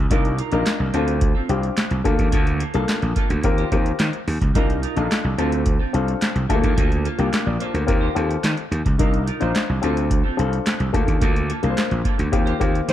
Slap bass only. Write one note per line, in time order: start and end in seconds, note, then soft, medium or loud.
0.11 0.40 C2 loud
0.52 0.62 A#1 medium
0.80 0.90 C2 medium
0.94 1.33 D2 loud
1.49 1.69 C2 medium
1.91 2.01 C2 medium
2.05 2.15 D2 medium
2.19 2.29 D#2 medium
2.33 2.62 D2 loud
2.75 2.84 C2 medium
3.02 3.12 A#1 medium
3.30 3.40 D2 medium
3.44 3.63 D#2 medium
3.72 3.91 D#2 medium
4.00 4.09 D#3 medium
4.27 4.37 D#2 loud
4.41 4.51 C#2 medium
4.55 4.84 C2 loud
4.97 5.06 A#1 medium
5.24 5.34 C2 medium
5.38 5.77 D2 loud
5.94 6.13 C2 medium
6.35 6.45 C2 medium
6.50 6.59 D2 medium
6.63 6.73 D#2 medium
6.78 7.07 D2 loud
7.19 7.29 C2 loud
7.46 7.56 A#1 medium
7.74 7.84 D2 medium
7.88 8.08 D#2 loud
8.16 8.36 D#2 loud
8.44 8.53 D#3 medium
8.71 8.81 D#2 medium
8.86 8.95 C#2 medium
9.00 9.29 C2 loud
9.42 9.51 A#1 medium
9.69 9.79 C2 medium
9.83 10.22 D2 loud
10.39 10.58 C2 medium
10.80 10.90 C2 medium
10.94 11.04 D2 medium
11.08 11.18 D#2 medium
11.22 11.51 D2 loud
11.63 11.73 C2 medium
11.91 12.01 A#1 medium
12.19 12.29 D2 medium
12.33 12.52 D#2 loud
12.61 12.80 D#2 loud
12.88 12.93 D#3 loud